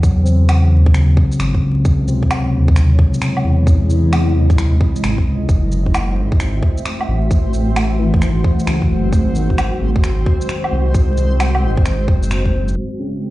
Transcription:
Already playing: detuned saw bass E2, synth keys C#3
0.03 synth keys F#3, kick, shaker
0.23 synth keys C4, shaker
0.49 finger snap, low woodblock, shaker
0.72 detuned saw bass D#2
0.86 kick
0.94 synth keys C#3, finger snap, shaker
1.17 kick
1.32 shaker
1.40 detuned saw bass G#1, finger snap, shaker
1.55 kick
1.63 detuned saw bass C#2
1.85 detuned saw bass C#2, ambient pad G#3 E4 C#5, kick, shaker
2.08 synth keys C3, shaker
2.23 kick
2.31 finger snap, low woodblock, shaker
2.54 detuned saw bass D#2
2.68 kick
2.76 finger snap, shaker
2.99 kick
3.14 shaker
3.22 finger snap, shaker
3.37 low woodblock
3.44 detuned saw bass E2
3.66 ambient pad D#5, kick, shaker
3.90 shaker
4.13 finger snap, low woodblock, shaker
4.35 detuned saw bass D#2, synth keys C3
4.50 kick, shaker
4.58 finger snap, shaker
4.81 kick
4.96 shaker
5.04 detuned saw bass G#1, finger snap, shaker
5.18 kick
5.26 detuned saw bass C#2
5.48 detuned saw bass F#1, ambient pad A3 F#4 E5, synth texture C4 C5, kick, shaker
5.72 shaker
5.86 kick
5.95 finger snap, low woodblock, shaker
6.17 detuned saw bass G#1
6.32 kick
6.40 finger snap, shaker
6.63 kick
6.78 shaker
6.85 finger snap, shaker
7.01 low woodblock
7.08 detuned saw bass A1
7.31 ambient pad F#5, kick, shaker
7.54 shaker
7.76 finger snap, low woodblock, shaker
7.99 detuned saw bass G#1, synth keys E3
8.14 kick
8.22 finger snap, shaker
8.44 kick
8.59 shaker
8.67 detuned saw bass C#2, finger snap, shaker
8.82 kick
8.90 detuned saw bass F#1
9.12 detuned saw bass G#1, ambient pad G#3 C5, kick, shaker
9.35 synth keys D#3, shaker
9.50 kick
9.58 finger snap, low woodblock, shaker
9.81 detuned saw bass G#1
9.96 kick
10.04 finger snap, shaker
10.26 kick
10.41 shaker
10.49 finger snap, shaker
10.64 low woodblock
10.72 detuned saw bass C2
10.94 kick, shaker
11.17 shaker
11.40 finger snap, low woodblock, shaker
11.55 low woodblock
11.63 detuned saw bass G#1
11.77 kick
11.86 finger snap, shaker
12.08 detuned saw bass F#1, kick
12.23 shaker
12.31 finger snap, shaker
12.46 kick
12.68 shaker
12.76 ambient pad G#3 E4 C#5, synth texture G#3 G#4
12.99 synth keys C#3

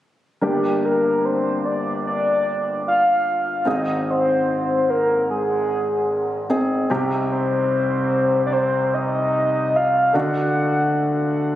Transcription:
0.41 grand piano G1 G2 A#3 D4 G4, soft synth lead G4
0.85 soft synth lead A#4
1.25 soft synth lead C5
1.65 soft synth lead D5
2.07 soft synth lead D5
2.88 soft synth lead F5
3.65 grand piano G#1 G#2 C4 D#4 G#4, soft synth lead D#5
4.11 soft synth lead C5
4.90 soft synth lead A#4
5.30 soft synth lead G#4
6.50 grand piano C4 D#4 G#4
6.90 grand piano C2 C3 C4 D#4 G4
7.32 soft synth lead C5
8.46 soft synth lead D5
8.53 soft synth lead C5
8.94 soft synth lead D#5
9.76 soft synth lead F5
10.13 grand piano D2 D3 A3 D4 F#4, soft synth lead F#5

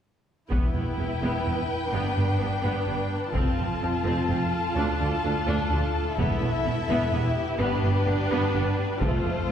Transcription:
0.50 double bass section E1, cello section E2, viola section B3 E4, violin section B4 G5, taiko
0.74 double bass section E1, cello section E2, viola section B3
0.98 double bass section E1, cello section E2, viola section B3
1.21 double bass section E1, cello section E2, viola section B3
1.45 double bass section E1, cello section E2, viola section B3
1.92 double bass section G1, cello section G2, viola section B3 D4
2.16 double bass section G1, cello section G2, viola section B3
2.39 double bass section G1, cello section G2, viola section B3
2.63 double bass section G1, cello section G2, viola section B3
2.87 double bass section G1, cello section G2, viola section B3
3.34 double bass section F1, cello section F2, viola section C4 F4, violin section A4 A5, taiko
3.58 double bass section F1, cello section F2, viola section C4
3.82 double bass section F1, cello section F2, viola section C4
4.04 double bass section F1, cello section F2, viola section C4
4.28 double bass section F1, cello section F2, viola section C4
4.75 double bass section D2, cello section D2, viola section D4
5.00 double bass section D2, cello section D2, viola section D4
5.23 double bass section D2, cello section D2, viola section D4
5.46 double bass section D2, cello section D2, viola section D4
5.70 double bass section D2, cello section D2, viola section D4
6.18 double bass section E1, cello section E2, viola section B3 E4, violin section E5, taiko
6.41 double bass section E1, cello section E2, viola section B3
6.65 double bass section E1, cello section E2, viola section B3
6.88 double bass section E1, cello section E2, viola section B3
7.12 double bass section E1, cello section E2, viola section B3, violin section G4
7.59 double bass section G1, cello section G2, viola section B3 D4, violin section B4
7.83 double bass section G1, cello section G2, viola section B3
8.06 double bass section G1, cello section G2, viola section B3
8.30 double bass section G1, cello section G2, viola section B3
8.54 double bass section G1, cello section G2, viola section B3
9.01 double bass section F1, cello section F2, viola section A3 F4, violin section A4 C5, taiko
9.25 double bass section F1, cello section F2, viola section A3
9.48 viola section A3

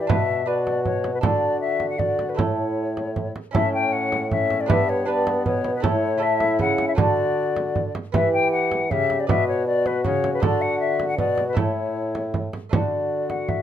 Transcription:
Already playing: trombone G4
0.01 flute D5
0.07 bassoon B2, lute B2 D4 B4, trombone F#4, flute E5, frame drum
0.46 lute D4 B4, trombone F#4, flute D5
0.67 frame drum
0.85 flute C#5, frame drum
1.04 frame drum
1.14 flute B4
1.21 bassoon D3, lute D3 D4 A4, trombone F#4, flute D5, frame drum
1.61 flute E5
1.80 frame drum
1.90 flute F#5
1.99 trombone F#4, flute D5, frame drum
2.19 frame drum
2.29 flute B4
2.35 bassoon A2, lute A2 A3 E4 A4
2.39 trombone E4, flute C#5, frame drum
2.97 frame drum
3.16 frame drum
3.36 frame drum
3.51 bassoon A2, lute A2 C#4 E4 A4, trombone C#4, flute E5, frame drum
3.74 flute G5
3.93 flute F#5
4.12 frame drum
4.31 trombone C#4, flute E5, frame drum
4.50 frame drum
4.61 flute D5
4.66 bassoon G2, lute G2 D4 G4 B4, trombone B3, flute E5, frame drum
4.89 flute C#5
5.06 trombone B3, lute D4 G4 B4, flute D5
5.27 frame drum
5.46 bassoon B2, lute B2, flute C#5, frame drum
5.64 frame drum
5.76 flute B4
5.80 bassoon A2, lute A2 A3 E4 A4, trombone E4, frame drum
5.85 flute C#5
6.18 lute A3 E4 A4, trombone E4
6.23 flute E5
6.40 frame drum
6.59 lute C#3, bassoon C#3, flute F#5, frame drum
6.78 frame drum
6.88 flute E5
6.95 bassoon D3, lute D3 A3 D4 F#4, trombone F#4, flute D5, frame drum
7.56 frame drum
7.76 frame drum
7.95 frame drum
8.12 bassoon E3, lute E3 B3 B4, trombone G4, flute E5, frame drum
8.33 flute G5
8.52 flute F#5
8.72 frame drum
8.91 bassoon C#3, lute C#3, trombone G4, flute E5, frame drum
9.10 frame drum
9.20 flute D5
9.27 bassoon B2, lute B2 B4 D5, trombone F#4, flute E5, frame drum
9.48 flute C#5
9.67 trombone F#4, flute D5
9.86 flute B4, frame drum
10.05 bassoon C#3, lute C#3, flute C#5, frame drum
10.24 frame drum
10.34 flute B4
10.40 bassoon D3, lute D3 D4 A4, trombone F#4, flute D5, frame drum
10.62 flute F#5
10.80 flute E5
11.00 frame drum
11.08 flute F#5
11.18 bassoon B2, lute B2, trombone F#4, flute D5, frame drum
11.38 frame drum
11.49 flute B4
11.53 bassoon A2, lute A3 E4 A4, frame drum
11.57 lute A2, trombone E4, flute C#5
12.15 frame drum
12.34 frame drum
12.53 frame drum
12.69 lute D3 A3 D4 F#4, bassoon D3, trombone F#4, flute D5, frame drum
13.30 flute F#5, frame drum
13.49 flute E5, frame drum

